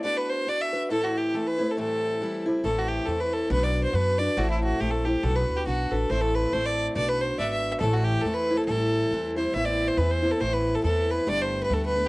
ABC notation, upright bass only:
X:1
M:2/4
L:1/8
Q:"Swing" 1/4=139
K:Ador
V:1 name="Upright bass" clef=bass
z4 | z4 | z4 | A,,,2 E,,2 |
B,,,2 F,,2 | A,,,2 _B,,,2 | B,,, D,, B,,, A,,, | A,,,2 A,,,2 |
B,,,2 ^G,,,2 | A,,,2 E,,2 | A,,,2 E,,2 | A,,,2 E,,2 |
A,,,2 E,,2 | G,,,2 D,,2 |]